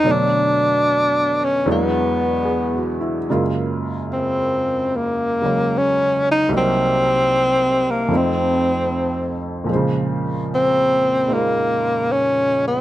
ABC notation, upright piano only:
X:1
M:4/4
L:1/8
Q:"Swing" 1/4=75
K:Gblyd
V:1 name="Upright piano"
z6 (3^G ^F =E | z8 | z8 | z8 |]
V:2 name="Upright piano" clef=bass
[_C,=D,G,=A,_d]4 [=E,,=E,^F,^G,=D]4 | [G,,D,A,B,F]4- [G,,D,A,B,F] [D,G,A,D]3 | [C,,C,G,B,E]4 [F,,F,=A,CE]4 | [B,,D,F,A,c]4 [A,B,EF]4 |]